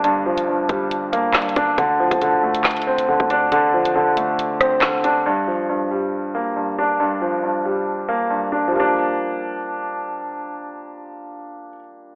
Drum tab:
HH |x-----------------x-----------------x-----------x-----------x-----------x---x---x---x-----------|x-----------------x-----x-----------------x-----x--x--x--x--------x-----------------x-----------|x-----------------x-----------------x-----------x-----------x-----------x-----------x-----------|------------------------------------------------------------------------------------------------|
CP |------------------------------------------------------------------------x-----------------------|------------------------------------------------x-----------------------------------------------|------------------------------------------------------------------------x-----------------------|------------------------------------------------------------------------------------------------|
SD |------------------------------------------------------------------------o-----------------------|------------------------------------------------o-----------------------------------------------|------------------------------------------------------------r-----------o-----------------------|------------------------------------------------------------------------------------------------|
BD |------------------------------------o-----------------------------------------------o-----------|o-----------------o-----------------------------------------------------------o-----------------|------------------------------------------------------------------------------------------------|------------------------------------------------------------------------------------------------|

HH |------------------------------------------------------------------------------------------------|------------------------------------------------------------------------------------------------|------------------------------------------------------------------------------------------------|
CP |------------------------------------------------------------------------------------------------|------------------------------------------------------------------------------------------------|------------------------------------------------------------------------------------------------|
SD |------------------------------------------------------------------------------------------------|------------------------------------------------------------------------------------------------|------------------------------------------------------------------------------------------------|
BD |------------------------------------------------------------------------------------------------|------------------------------------------------------------------------------------------------|------------------------------------------------------------------------------------------------|